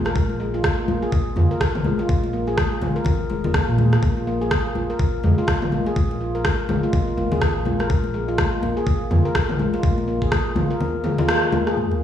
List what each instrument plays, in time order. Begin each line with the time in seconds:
Already playing: sub bass A#1
0.05 handpan A#4, cross-stick, muted conga
0.15 sub bass A#1, kick, high conga
0.29 muted conga
0.40 handpan G#3
0.54 handpan F4, muted conga
0.63 handpan A#3, kick, cross-stick, high conga
0.78 handpan F4
0.88 sub bass A#1, handpan A#3, muted conga, high conga
1.02 handpan G#4
1.12 kick, muted conga
1.36 sub bass F2, handpan F4, mid tom, muted conga, high conga
1.51 handpan A#4
1.61 kick, cross-stick, muted conga
1.75 mid tom
1.84 sub bass A#1, handpan G#3, high conga
1.99 handpan F4, muted conga
2.09 sub bass A#1, handpan A#3, kick, high conga
2.23 handpan F4, muted conga
2.33 handpan A#3
2.47 handpan G#4, muted conga
2.58 kick, cross-stick, high conga
2.82 sub bass A#1, handpan F4, mid tom, muted conga, high conga
2.96 handpan A#4
3.05 kick, muted conga, low conga
3.30 sub bass F1, handpan G#3, muted conga, high conga
3.44 handpan A#3, low conga
3.54 handpan A#3, kick, cross-stick, muted conga
3.69 sub bass A#2, handpan F4
3.78 handpan G#4, high conga, low conga
3.92 handpan A#3, cross-stick, muted conga
4.02 sub bass A#1, handpan A#3, kick, high conga
4.17 handpan F4, muted conga
4.27 handpan A#3
4.41 handpan G#4, muted conga
4.51 kick, cross-stick, high conga
4.75 sub bass A#1, handpan F4, muted conga, high conga
4.90 handpan A#4
4.99 kick, muted conga
5.23 sub bass F2, handpan G#3, mid tom, muted conga, high conga
5.38 handpan F4
5.47 handpan A#3, kick, cross-stick, muted conga
5.62 handpan F4, mid tom
5.72 sub bass A#1, handpan A#3, high conga
5.86 handpan G#4, muted conga
5.96 sub bass A#1, kick, high conga
6.11 muted conga
6.21 handpan F4
6.35 handpan A#4, muted conga
6.45 kick, cross-stick, high conga
6.69 sub bass A#1, handpan G#3, mid tom, muted conga, high conga
6.83 handpan F4
6.93 handpan A#3, kick, muted conga, low conga
7.08 handpan F4
7.17 sub bass G#1, handpan A#3, muted conga, high conga
7.32 handpan G#4, low conga
7.42 kick, cross-stick, muted conga
7.56 sub bass A#1
7.65 handpan F4, high conga, low conga
7.80 handpan A#4, cross-stick, muted conga
7.90 sub bass A#1, kick, high conga
8.04 muted conga
8.14 handpan G#3
8.28 handpan F4, muted conga
8.38 handpan A#3, kick, cross-stick, high conga
8.53 handpan F4
8.62 sub bass A#1, handpan A#3, muted conga, high conga
8.77 handpan G#4
8.87 kick, muted conga
9.11 sub bass F2, handpan F4, mid tom, muted conga, high conga
9.25 handpan A#4
9.35 kick, cross-stick, muted conga
9.49 mid tom
9.59 sub bass A#1, handpan G#3, high conga
9.74 handpan F4, muted conga
9.83 sub bass A#1, handpan A#3, kick, high conga
9.98 handpan F4, muted conga
10.08 handpan A#3
10.22 handpan G#4, kick, muted conga
10.32 kick, cross-stick, high conga
10.56 sub bass A#1, handpan F4, mid tom, muted conga, high conga
10.71 handpan A#4
10.80 muted conga, low conga
11.04 handpan G#3, mid tom, muted conga, high conga
11.18 handpan F4, low conga
11.29 handpan A#3, cross-stick, muted conga
11.43 handpan F4
11.52 handpan A#3, high conga, low conga
11.67 handpan G#4, cross-stick, muted conga
11.77 handpan A#3, sub drop, high conga
11.91 handpan F4, muted conga